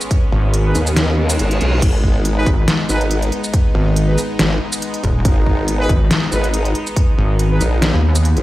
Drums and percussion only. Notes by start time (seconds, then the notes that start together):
0.01 shaker
0.11 kick, closed hi-hat
0.54 closed hi-hat
0.75 closed hi-hat, shaker
0.87 shaker
0.96 snare, closed hi-hat
1.30 closed hi-hat, shaker
1.39 closed hi-hat
1.51 closed hi-hat
1.61 closed hi-hat
1.82 kick, closed hi-hat, crash
2.04 kick
2.25 closed hi-hat
2.46 kick, closed hi-hat
2.68 snare, closed hi-hat
2.89 shaker
3.01 closed hi-hat
3.11 closed hi-hat
3.22 closed hi-hat
3.32 closed hi-hat
3.44 shaker
3.54 kick, closed hi-hat
3.96 closed hi-hat
4.18 closed hi-hat, shaker
4.39 snare, closed hi-hat
4.72 closed hi-hat, shaker
4.82 closed hi-hat
4.94 closed hi-hat
5.04 kick, closed hi-hat
5.25 kick, closed hi-hat
5.46 kick
5.68 closed hi-hat
5.89 kick, closed hi-hat
6.11 snare, closed hi-hat
6.32 shaker
6.44 closed hi-hat
6.54 closed hi-hat
6.65 closed hi-hat
6.75 closed hi-hat
6.87 shaker
6.96 kick, closed hi-hat
7.39 closed hi-hat
7.61 closed hi-hat, shaker
7.82 snare, closed hi-hat
8.15 closed hi-hat, shaker
8.25 closed hi-hat
8.37 closed hi-hat